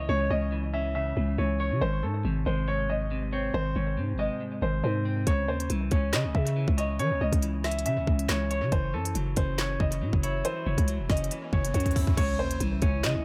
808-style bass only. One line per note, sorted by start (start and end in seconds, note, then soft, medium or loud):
0.09 0.30 C#2 loud
0.30 1.13 C#2 loud
1.17 1.38 C#2 loud
1.38 1.73 C#2 loud
1.71 1.81 C#3 loud
1.82 2.05 G#1 loud
2.03 2.24 G#2 medium
2.25 2.45 G#1 loud
2.46 3.50 G#1 loud
3.54 3.75 G#1 loud
3.76 3.99 G#1 loud
3.97 4.15 G#2 loud
4.14 4.30 G#1 loud
4.62 4.83 G#1 loud
4.84 5.25 G#2 loud
5.27 5.50 C#2 loud
5.48 5.69 D#2 loud
5.70 5.91 C2 loud
5.92 6.15 C#2 loud
6.13 6.26 C#3 loud
6.25 6.34 C#2 loud
6.35 6.66 C#3 loud
6.68 7.01 C#2 loud
7.00 7.12 E3 loud
7.11 7.21 C#2 loud
7.21 7.32 C#2 loud
7.33 7.87 C#2 loud
7.86 7.99 C#3 loud
7.97 8.07 C#2 medium
8.07 8.28 C#2 loud
8.29 8.64 C#2 loud
8.62 8.72 C#3 loud
8.72 8.95 F#1 loud
8.94 9.14 F#2 loud
9.15 9.36 F#1 loud
9.37 9.78 F#1 loud
9.80 10.03 F#1 loud
10.02 10.13 A2 loud
10.13 10.44 F#1 loud
10.66 10.77 F#1 loud
10.78 11.01 C#2 loud
10.99 11.09 E1 loud
11.10 11.30 F#1 loud
11.53 11.73 F#1 loud
11.74 12.16 F#2 loud
12.17 12.41 C#2 loud
12.39 12.60 D#2 loud
12.61 12.81 C2 loud
12.82 13.05 C#2 loud
13.04 13.17 C#3 loud
13.15 13.25 C#2 loud